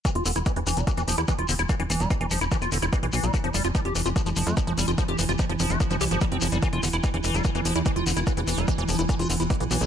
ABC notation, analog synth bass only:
X:1
M:4/4
L:1/16
Q:1/4=146
K:Ephr
V:1 name="Analog synth bass" clef=bass
z E,,, E,,, E,,, z E,,, E,,, E,,, z E,,, E,,, E,, z E,,, E,,, E,,, | z E,,, E,,, E,,, z E,,, E,,, E,,, z E,,, E,,, E,,, z B,,, B,,, B,,, | z F,,, F,,, F,,, z F,,, F,,, F,,, z F,,, F,,, F,, z F,,, F,,, F,,, | z F,,, F,,, F,,, z F,,, F,,, F,,, z F,,, C,, G,,, z F,,, F,,, F,,, |
z E,,, E,,, E,,, z E,,, E,,, E,,, z E,,, E,,, E,, z E,,, E,,, E,,, | z E,,, E,,, E,,, z E,,, E,,, E,,, z E,,, E,,, E,,, z B,,, B,,, B,,, |]